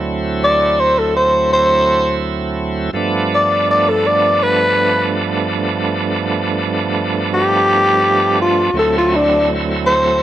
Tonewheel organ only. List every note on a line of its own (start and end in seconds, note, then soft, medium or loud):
0.00 2.90 D2 medium
0.00 2.90 F#3 medium
0.00 2.90 A3 medium
0.00 2.91 C4 medium
0.00 2.91 E4 medium
2.93 8.70 G2 medium
2.93 8.70 F3 medium
2.93 8.71 A3 medium
2.93 8.71 B3 medium
2.93 8.72 D4 medium
8.73 10.23 D2 medium
8.73 10.23 F#3 medium
8.73 10.23 A3 medium
8.73 10.23 C4 medium
8.73 10.23 E4 medium